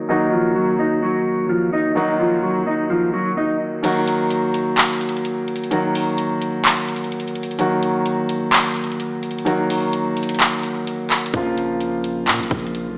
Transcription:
0.00 0.09 D#3 medium
0.00 0.09 F#3 medium
0.00 0.10 A#3 medium
0.00 0.11 F#4 medium
0.09 1.92 D#3 medium
0.09 1.93 F#3 medium
0.09 1.93 A#3 medium
0.09 0.27 D#4 medium
0.09 1.94 F#4 medium
0.09 0.28 D#5 medium
0.32 0.51 F3 medium
0.32 0.51 F4 medium
0.56 0.74 F#3 medium
0.56 0.74 F#4 medium
0.79 0.97 D#4 medium
0.79 0.98 D#5 medium
1.02 1.47 F#3 medium
1.02 1.47 F#4 medium
1.49 1.68 F3 medium
1.49 1.68 F4 medium
1.73 1.91 D#4 medium
1.73 1.92 D#5 medium
1.95 3.79 D#3 medium
1.95 3.80 F#3 medium
1.95 3.80 A#3 medium
1.95 2.15 D#4 medium
1.95 3.80 F#4 medium
1.95 2.15 D#5 medium
2.20 2.38 F3 medium
2.20 2.38 F4 medium
2.43 2.62 F#3 medium
2.43 2.61 F#4 medium
2.67 2.85 D#4 medium
2.67 2.85 D#5 medium
2.90 3.09 F3 medium
2.90 3.08 F4 medium
3.13 3.32 F#3 medium
3.13 3.32 F#4 medium
3.37 3.55 D#4 medium
3.37 3.56 D#5 medium
3.83 5.67 D#3 medium
3.83 5.67 F#3 medium
3.83 5.68 A#3 medium
3.83 5.68 F#4 medium
3.83 closed hi-hat medium
3.83 crash medium
4.08 closed hi-hat medium
4.31 closed hi-hat medium
4.54 closed hi-hat medium
4.78 clap loud
4.78 closed hi-hat medium
4.85 closed hi-hat medium
4.93 closed hi-hat medium
5.01 closed hi-hat medium
5.09 closed hi-hat medium
5.17 closed hi-hat soft
5.25 closed hi-hat medium
5.48 closed hi-hat medium
5.56 closed hi-hat medium
5.64 closed hi-hat medium
5.71 7.55 D#3 medium
5.71 7.55 F#3 medium
5.71 7.55 A#3 medium
5.71 7.56 F#4 medium
5.71 closed hi-hat medium
5.95 open hi-hat medium
6.18 closed hi-hat medium
6.42 closed hi-hat medium
6.65 clap loud
6.65 closed hi-hat medium
6.88 closed hi-hat medium
6.96 closed hi-hat medium
7.04 closed hi-hat soft
7.12 closed hi-hat medium
7.20 closed hi-hat medium
7.28 closed hi-hat medium
7.35 closed hi-hat medium
7.43 closed hi-hat medium
7.51 closed hi-hat medium
7.59 9.42 D#3 medium
7.59 9.43 F#3 medium
7.59 9.43 A#3 medium
7.59 9.44 F#4 medium
7.59 closed hi-hat medium
7.83 closed hi-hat medium
8.06 closed hi-hat medium
8.29 closed hi-hat medium
8.53 clap loud
8.53 closed hi-hat medium
8.60 closed hi-hat medium
8.68 closed hi-hat medium
8.76 closed hi-hat medium
8.84 closed hi-hat medium
8.92 closed hi-hat soft
9.00 closed hi-hat medium
9.23 closed hi-hat medium
9.31 closed hi-hat medium
9.38 closed hi-hat medium
9.45 11.29 D#3 medium
9.45 11.30 F#3 medium
9.45 11.30 A#3 medium
9.45 11.30 F#4 medium
9.45 closed hi-hat medium
9.70 open hi-hat medium
9.93 closed hi-hat medium
10.17 closed hi-hat medium
10.23 closed hi-hat medium
10.29 closed hi-hat medium
10.35 closed hi-hat medium
10.40 clap loud
10.40 closed hi-hat medium
10.63 closed hi-hat medium
10.87 closed hi-hat medium
11.10 clap medium
11.10 closed hi-hat soft
11.18 closed hi-hat medium
11.26 closed hi-hat medium
11.34 12.29 A#1 loud
11.34 12.98 C#3 medium
11.34 12.98 F3 medium
11.34 12.98 A#3 medium
11.34 12.98 F4 medium
11.34 kick loud
11.34 closed hi-hat medium
11.58 closed hi-hat medium
11.81 closed hi-hat medium
12.04 closed hi-hat medium
12.27 12.41 A#2 loud
12.27 clap loud
12.27 closed hi-hat medium
12.35 closed hi-hat medium
12.40 12.50 A#1 loud
12.40 closed hi-hat medium
12.51 12.88 A#1 loud
12.51 kick loud
12.51 closed hi-hat medium
12.59 closed hi-hat medium
12.67 closed hi-hat soft
12.75 closed hi-hat medium
12.87 12.98 B1 loud

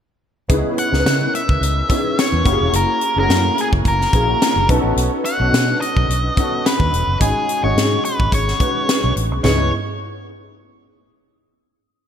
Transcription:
0.49 0.60 C#2 medium
0.49 0.88 B3 medium
0.49 0.89 C#4 medium
0.49 0.89 D#4 medium
0.49 0.89 E4 medium
0.49 0.89 G#4 medium
0.49 kick medium
0.49 closed hi-hat medium
0.78 1.35 F#5 medium
0.78 closed hi-hat medium
0.92 1.02 C#2 medium
0.92 1.81 B3 medium
0.92 1.81 C#4 medium
0.92 1.82 E4 medium
0.92 0.99 A#4 medium
0.92 snare soft
0.99 1.85 B4 medium
1.05 1.25 C#3 medium
1.05 snare medium
1.05 closed hi-hat medium
1.35 2.21 E5 medium
1.35 closed hi-hat medium
1.49 1.58 C#2 medium
1.49 kick medium
1.61 1.81 C#2 medium
1.61 closed hi-hat medium
1.89 2.45 B3 medium
1.89 2.44 C#4 medium
1.89 2.45 D#4 medium
1.89 2.44 E4 medium
1.89 2.46 G#4 medium
1.89 kick medium
1.89 closed hi-hat medium
2.19 2.75 C#5 medium
2.19 snare loud
2.19 closed hi-hat medium
2.32 2.41 E2 medium
2.45 2.56 F#1 medium
2.45 3.10 A#3 medium
2.45 3.10 C#4 medium
2.45 3.10 E4 medium
2.45 3.10 F#4 medium
2.45 2.53 G4 medium
2.45 kick medium
2.45 closed hi-hat medium
2.52 3.14 G#4 medium
2.61 2.70 E1 medium
2.73 2.84 F#1 loud
2.73 3.18 A#4 medium
2.73 closed hi-hat medium
3.01 closed hi-hat medium
3.16 3.25 F#1 medium
3.16 3.22 A3 medium
3.16 4.05 C#4 medium
3.16 4.06 E4 medium
3.16 4.06 F#4 medium
3.16 4.06 G#4 medium
3.16 3.60 A#4 medium
3.22 4.09 A#3 medium
3.29 3.49 F#2 medium
3.29 snare medium
3.29 closed hi-hat medium
3.58 3.68 G#4 medium
3.58 closed hi-hat medium
3.73 3.82 F#1 medium
3.73 kick medium
3.85 4.05 F#1 medium
3.85 4.67 A#4 medium
3.85 kick medium
3.85 closed hi-hat medium
4.02 snare soft
4.13 4.33 A#1 medium
4.13 4.69 A#3 medium
4.13 4.68 C#4 medium
4.13 4.69 E4 medium
4.13 4.68 F#4 medium
4.13 4.70 G#4 medium
4.13 kick medium
4.13 closed hi-hat medium
4.42 snare loud
4.42 closed hi-hat medium
4.56 4.65 F#1 medium
4.69 4.80 B1 medium
4.69 5.34 B3 medium
4.69 5.34 C#4 medium
4.69 5.34 D#4 medium
4.69 5.34 F#4 medium
4.69 5.34 A4 medium
4.69 kick medium
4.69 closed hi-hat medium
4.84 4.93 A1 medium
4.96 5.07 B1 medium
4.96 closed hi-hat medium
5.25 5.77 F#5 loud
5.25 closed hi-hat medium
5.40 5.49 B1 medium
5.40 6.29 B3 medium
5.40 6.29 C#4 medium
5.40 5.46 D4 soft
5.40 6.30 F#4 medium
5.40 6.30 A4 medium
5.47 6.33 D#4 medium
5.53 5.72 B2 medium
5.53 snare loud
5.53 closed hi-hat medium
5.81 6.67 D#5 loud
5.81 closed hi-hat medium
5.97 6.05 B1 medium
5.97 kick medium
6.08 6.28 B1 medium
6.08 closed hi-hat medium
6.36 7.14 B3 medium
6.36 7.14 C#4 medium
6.36 7.14 D#4 medium
6.36 7.14 F#4 medium
6.36 7.15 A4 medium
6.36 kick medium
6.36 closed hi-hat medium
6.66 7.17 B4 medium
6.66 snare loud
6.66 closed hi-hat medium
6.80 6.89 D#2 medium
6.80 kick medium
6.93 7.03 E1 medium
6.93 closed hi-hat medium
7.07 7.16 F#1 medium
7.19 7.31 G#1 medium
7.19 7.59 G#3 medium
7.19 7.60 C#4 medium
7.19 7.60 D#4 medium
7.19 7.60 F#4 medium
7.19 7.60 G#4 medium
7.19 7.61 G#4 medium
7.19 kick medium
7.19 closed hi-hat loud
7.49 closed hi-hat medium
7.63 7.73 G#1 medium
7.63 8.52 G#3 medium
7.63 8.52 C#4 medium
7.63 8.53 D#4 medium
7.63 8.53 F#4 medium
7.63 8.53 G#4 medium
7.63 8.05 C#5 medium
7.76 7.96 G#2 medium
7.76 snare loud
7.76 closed hi-hat medium
8.05 8.34 B4 medium
8.05 closed hi-hat medium
8.19 8.28 G#1 medium
8.19 kick medium
8.32 8.52 G#1 medium
8.32 9.13 C#5 medium
8.32 kick medium
8.32 closed hi-hat medium
8.48 snare soft
8.59 9.37 G#3 medium
8.59 9.37 C#4 medium
8.59 9.37 D#4 medium
8.59 9.37 F#4 medium
8.59 9.37 B4 medium
8.59 kick medium
8.59 closed hi-hat medium
8.89 snare loud
8.89 closed hi-hat medium
9.04 9.13 B1 medium
9.16 9.31 A1 medium
9.16 closed hi-hat medium
9.31 9.40 B1 medium
9.43 9.70 C#2 medium
9.43 9.70 B3 medium
9.43 9.70 C#4 medium
9.43 9.70 D#4 medium
9.43 9.70 E4 medium
9.43 9.70 G#4 medium
9.43 9.70 C#5 medium
9.43 snare medium
9.43 floor tom medium

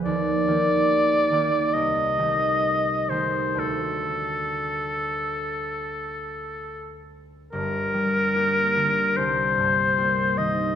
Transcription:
0.05 1.78 D#2 soft
0.05 1.75 D5 loud
0.47 1.30 D#3 soft
0.47 1.31 A#3 soft
0.47 1.31 G4 soft
1.31 1.78 D#3 soft
1.31 1.78 A#3 soft
1.31 2.18 G4 soft
1.73 3.63 C2 soft
1.73 3.11 D#5 medium
2.18 3.10 D#3 soft
2.18 3.10 A3 soft
2.18 3.10 G4 soft
3.10 3.64 D#3 soft
3.10 3.55 A3 soft
3.10 3.64 G4 soft
3.10 3.61 C5 medium
3.54 7.44 D2 soft
3.54 7.45 D3 soft
3.54 7.46 A3 soft
3.54 7.47 F#4 soft
3.59 7.08 A4 medium
7.52 9.20 G1 soft
7.52 9.21 G2 soft
7.52 9.18 A#4 medium
7.94 10.75 G3 soft
8.35 9.97 A#3 soft
8.35 9.97 G4 soft
8.76 9.20 D3 soft
9.17 10.75 C2 soft
9.17 10.39 C5 medium
9.57 10.75 G2 soft
9.98 10.75 A#3 soft
9.98 10.75 G4 soft
10.38 10.75 D#3 soft
10.38 10.75 D#5 medium

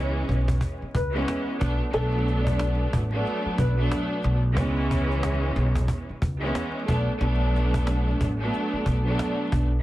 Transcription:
0.00 0.24 C#2 loud
0.00 0.83 E3 loud
0.00 0.83 G#3 medium
0.00 0.83 B3 medium
0.00 0.83 C#4 loud
0.00 0.90 C#5 medium
0.29 0.57 B1 loud
0.29 cajon slap soft
0.48 cajon bass loud
0.61 cajon bass medium
0.82 muted upright bass stroke soft
0.95 1.23 C#2 medium
0.95 1.25 B4 medium
0.95 cajon bass medium
1.14 1.60 E3 loud
1.14 1.60 G#3 medium
1.14 1.59 B3 medium
1.14 1.61 C#4 loud
1.28 cajon slap loud
1.59 1.78 B1 loud
1.59 1.83 F#3 medium
1.59 1.83 A3 medium
1.59 1.83 B3 loud
1.59 1.83 D4 loud
1.59 cajon bass loud
1.92 2.88 B1 loud
1.92 3.00 F#3 loud
1.92 3.01 A3 medium
1.92 3.01 B3 medium
1.92 3.01 D4 loud
1.92 2.44 A4 loud
1.92 cajon slap medium
2.28 cajon slap soft
2.44 3.53 D5 medium
2.44 cajon bass medium
2.59 cajon slap loud
2.93 3.21 A1 medium
2.93 cajon bass loud
3.12 3.71 F#3 loud
3.12 3.72 A3 medium
3.12 3.72 B3 medium
3.12 3.72 D4 loud
3.26 cajon slap soft
3.46 muted upright bass stroke soft
3.58 3.86 B1 loud
3.58 4.09 B4 medium
3.58 cajon bass medium
3.77 4.37 F#3 loud
3.77 4.37 A3 medium
3.77 4.38 B3 medium
3.77 4.38 D4 loud
3.92 cajon slap loud
4.22 4.57 B1 loud
4.22 cajon slap soft
4.54 5.52 C#2 loud
4.54 6.10 E3 loud
4.54 6.10 G#3 loud
4.54 6.11 B3 medium
4.54 6.11 C#4 loud
4.54 cajon bass loud
4.91 cajon bass loud
5.11 cajon slap soft
5.23 cajon slap loud
5.56 5.84 B1 loud
5.56 cajon slap soft
5.75 cajon bass loud
5.88 cajon bass medium
6.09 muted upright bass stroke soft
6.22 6.50 C#2 medium
6.22 cajon bass loud
6.41 6.87 E3 loud
6.41 6.87 G#3 medium
6.41 6.86 B3 medium
6.41 6.88 C#4 loud
6.55 cajon slap loud
6.87 7.05 B1 loud
6.87 7.10 F#3 medium
6.87 7.10 A3 loud
6.87 7.11 B3 loud
6.87 7.11 D4 loud
6.87 cajon bass loud
7.19 8.16 B1 loud
7.19 8.28 F#3 loud
7.19 8.28 A3 medium
7.19 8.28 B3 medium
7.19 8.29 D4 loud
7.19 cajon slap medium
7.55 cajon slap soft
7.74 cajon bass medium
7.87 cajon slap loud
8.21 8.49 A1 medium
8.21 cajon bass medium
8.39 8.99 F#3 loud
8.39 8.99 A3 medium
8.39 8.99 B3 medium
8.39 9.00 D4 loud
8.53 cajon slap soft
8.73 muted upright bass stroke medium
8.86 9.14 B1 medium
8.86 cajon bass medium
9.05 9.65 F#3 loud
9.05 9.65 A3 medium
9.05 9.65 B3 medium
9.05 9.65 D4 loud
9.19 cajon slap loud
9.52 9.80 B1 medium
9.52 cajon bass loud

